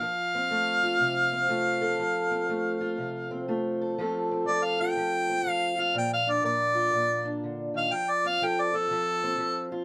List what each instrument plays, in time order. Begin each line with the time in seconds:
Already playing: steel-string acoustic guitar F4, harmonica F5
0.01 steel-string acoustic guitar F3
0.35 steel-string acoustic guitar C4
0.50 steel-string acoustic guitar A3
0.83 steel-string acoustic guitar F4
1.00 steel-string acoustic guitar C3
1.33 steel-string acoustic guitar C4
1.49 steel-string acoustic guitar A3 F4
1.81 steel-string acoustic guitar A4
1.99 steel-string acoustic guitar F3
2.31 steel-string acoustic guitar C4
2.49 steel-string acoustic guitar A3
2.81 steel-string acoustic guitar F4
2.98 steel-string acoustic guitar C3
3.31 steel-string acoustic guitar C4
3.48 steel-string acoustic guitar A3 F4
3.81 steel-string acoustic guitar A4
3.98 steel-string acoustic guitar F3 A3 C4 F4 A4
4.31 steel-string acoustic guitar C4
4.48 steel-string acoustic guitar F3 A4, harmonica D5
4.65 harmonica F5
4.80 steel-string acoustic guitar F4, harmonica G5
4.97 steel-string acoustic guitar F3
5.30 steel-string acoustic guitar C4
5.46 steel-string acoustic guitar F3, harmonica F5
5.78 steel-string acoustic guitar F4, harmonica F5
5.94 steel-string acoustic guitar A#2, harmonica G5
6.13 harmonica F5
6.27 steel-string acoustic guitar D4, harmonica D5
6.43 steel-string acoustic guitar A#2 A#4, harmonica D5
6.75 steel-string acoustic guitar F4
6.93 steel-string acoustic guitar A#2
7.25 steel-string acoustic guitar D4
7.44 steel-string acoustic guitar D3
7.74 steel-string acoustic guitar D#3, harmonica F5
7.92 steel-string acoustic guitar F3, harmonica G5
8.10 harmonica D5
8.24 steel-string acoustic guitar C4, harmonica F5
8.42 steel-string acoustic guitar F3 A4, harmonica G5
8.61 harmonica D5
8.73 steel-string acoustic guitar F4, harmonica A4
8.91 steel-string acoustic guitar F3
9.23 steel-string acoustic guitar C4
9.38 steel-string acoustic guitar F3
9.72 steel-string acoustic guitar F4